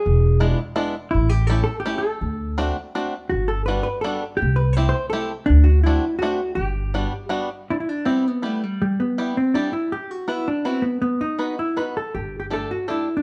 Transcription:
<<
  \new Staff \with { instrumentName = "Hollow-body jazz guitar" } { \time 3/4 \key g \major \tempo 4 = 163 aes'4. r4. | e'8 g'8 a'8 a'8 g'8 a'8~ | a'4. r4. | fis'8 a'8 b'8 b'8 a'8 r8 |
g'8 b'8 c''8 c''8 a'8 r8 | d'8 fis'8 e'4 fis'4 | g'2 r4 | \key e \minor e'32 d'32 e'16 d'8 c'8 b8 a8 g8 |
g8 b4 c'8 d'8 e'8 | g'8 fis'8 e'8 d'8 c'8 b8 | b8 dis'4 e'8 b'8 a'8 | \tuplet 3/2 { g'4 g'8 } a'8 fis'8 \tuplet 3/2 { e'4 d'8 } | }
  \new Staff \with { instrumentName = "Five-string banjo" } { \time 3/4 \key g \major r4 <gis b d' e'>8 r8 <gis b d' e'>8 r8 | r4 <a cis' e' g'>8 r8 <a cis' e' g'>8 r8 | r4 <a c' d' fis'>8 r8 <a c' d' fis'>8 r8 | r4 <g b d' fis'>8 r8 <g b d' fis'>8 r8 |
r4 <a c' e' g'>8 r8 <a c' e' g'>8 r8 | r4 <a c' d' fis'>8 r8 <a c' d' fis'>8 r8 | r4 <g b d' fis'>8 r8 <g b d' fis'>8 r8 | \key e \minor r4 <g b e' g'>8 r8 <g b e' g'>8 r8 |
r4 <g b e' g'>8 r8 <g b e' g'>8 r8 | r4 <b e' fis' b'>8 r8 <b e' fis' b'>8 r8 | r4 <b dis' fis' b'>8 r8 <b dis' fis' b'>8 r8 | r4 <a d' g' a'>8 r8 <a d' g' a'>8 r8 | }
  \new Staff \with { instrumentName = "Upright bass" } { \clef bass \time 3/4 \key g \major e,,2 r4 | a,,2 r4 | d,2 r4 | g,,2 r4 |
c,2 r4 | d,2 r4 | g,,2 r4 | \key e \minor r2. |
r2. | r2. | r2. | g,,2 r4 | }
>>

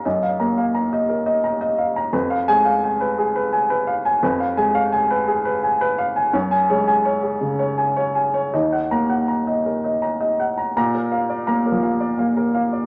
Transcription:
<<
  \new Staff \with { instrumentName = "Upright piano" } { \time 3/4 \key ees \minor \tempo 4 = 84 << { r2. | r8 aes''8 r2 | r2. | r16 aes''8 r2 r16 |
r8 bes''8 r2 | bes''8 r2 r8 | } \\ { <ees'' bes''>16 f''16 bes''16 f''16 bes''16 ees''16 bes'16 ees''16 bes''16 ees''16 f''16 bes''16 | ces''16 f''8 f''16 aes''16 ces''16 aes'16 ces''16 aes''16 ces''16 f''16 aes''16 | ces''16 f''16 aes''16 f''16 aes''16 ces''16 aes'16 ces''16 aes''16 ces''16 f''16 aes''16 | des''8 des''16 aes''16 des''16 aes'16 des16 des''16 aes''16 des''16 aes''16 des''16 |
ees''16 ges''8 ges''16 bes''16 ees''16 bes'16 ees''16 bes''16 ees''16 ges''16 bes''16 | r16 bes'16 f''16 d''16 bes''16 bes'16 f''16 d''16 f''16 bes'16 f''16 d''16 | } >> }
  \new Staff \with { instrumentName = "Upright piano" } { \clef bass \time 3/4 \key ees \minor ges,8 bes4 r4. | f,8 aes4 r4. | f,8 aes4 r4. | ges,8 aes4 r4. |
ees,8 bes4 r4. | bes,4 \tuplet 3/2 { bes8 f4 } bes8 r8 | }
>>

